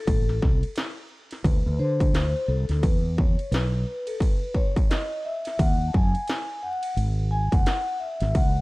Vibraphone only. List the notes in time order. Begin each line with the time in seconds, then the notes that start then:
Already playing: A4
1.44 B4
1.79 C5
2.48 A4
2.82 B4
3.17 C#5
3.51 B4
4.07 A4
4.56 C#5
4.90 D#5
5.25 E5
5.60 F#5
5.88 A5
5.94 G#5
6.63 F#5
7.31 G#5
7.52 F#5
8.00 E5
8.34 F#5